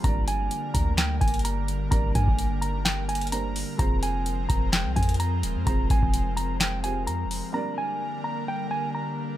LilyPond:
<<
  \new Staff \with { instrumentName = "Clean electric guitar" } { \time 4/4 \key g \phrygian \tempo 4 = 128 bes''8 aes''4 bes''8 g''8 aes''8 bes''4 | bes''8 aes''4 bes''8 g''8 aes''8 bes''4 | bes''8 aes''4 bes''8 g''8 aes''8 bes''4 | bes''8 aes''4 bes''8 g''8 aes''8 bes''4 |
bes''8 aes''4 bes''8 g''8 aes''8 bes''4 | }
  \new Staff \with { instrumentName = "Felt piano" } { \time 4/4 \key g \phrygian <g bes d' bes' d''>1 | <g bes d' bes' d''>2. <g bes d' bes' c''>4 | <aes c' f' aes' c''>1 | <aes c' f' aes' c''>2~ <aes c' f' aes' c''>8 <c' f' g' aes' c''>4. |
<g bes d' bes' d''>1 | }
  \new Staff \with { instrumentName = "Analog synth pad" } { \clef bass \time 4/4 \key g \phrygian << { bes'1~ | bes'1~ | bes'1~ | bes'1 |
bes'1 | } \\ { <d g bes>1~ | <d g bes>1 | <f aes c'>1~ | <f aes c'>1 |
<d g bes>1 | } >> }
  \new Staff \with { instrumentName = "808-style bass" } { \clef bass \time 4/4 \key g \phrygian g,,4 r8 d,4 g,,4. | g,,8 g,16 g,,2. r16 | f,,4. f,,8. c,16 f,4 ees,,16 f,16 | f,,8 aes,,16 f,,2~ f,,16 f,16. f,,16. r16 |
r1 | }
  \new DrumStaff \with { instrumentName = "Drums" } \drummode { \time 4/4 <hh bd>8 hh8 hh8 <hh bd>8 <hc hh sn>8 <hh bd>32 hh32 hh32 hh32 hh8 hh8 | <hh bd>8 <hh bd>16 bd16 hh8 hh8 <hc hh sn>8 hh32 hh32 hh32 hh32 hh8 hho8 | <hh bd>8 hh8 hh8 <hh bd>8 <hc hh sn>8 <hh bd>32 hh32 hh32 hh32 hh8 hh8 | <hh bd>8 <hh bd>16 bd16 hh8 hh8 <hc hh sn>8 hh8 hh8 hho8 |
r4 r4 r4 r4 | }
>>